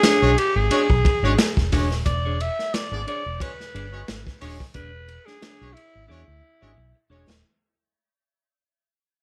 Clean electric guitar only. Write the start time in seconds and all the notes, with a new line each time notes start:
0.03 D4 G#4 C#5
0.37 muted clean electric guitar stroke
0.55 muted clean electric guitar stroke
0.71 D4 G#4 D5
1.04 muted clean electric guitar stroke
1.24 D4 G#4 D5
1.39 muted clean electric guitar stroke
1.58 muted clean electric guitar stroke
1.72 D4 G#4 C#5
1.92 muted clean electric guitar stroke
2.07 muted clean electric guitar stroke
2.25 D4 G#4 C#5
2.40 muted clean electric guitar stroke
2.59 muted clean electric guitar stroke
2.93 muted clean electric guitar stroke
3.07 D4 G#4 C#5
3.41 muted clean electric guitar stroke
3.74 D4 G#4 D5
3.93 muted clean electric guitar stroke
4.27 muted clean electric guitar stroke
4.42 D4 G#4 C#5
4.75 D4 G#4 D5
5.08 muted clean electric guitar stroke
5.26 D4 G#4 D5
5.42 D4 G#4 C#5
5.76 muted clean electric guitar stroke
5.94 muted clean electric guitar stroke
6.08 D4 G#4 D5
6.43 muted clean electric guitar stroke
6.62 D4 G#4 D5
6.77 muted clean electric guitar stroke
6.95 muted clean electric guitar stroke
7.10 D4 G#4 C#5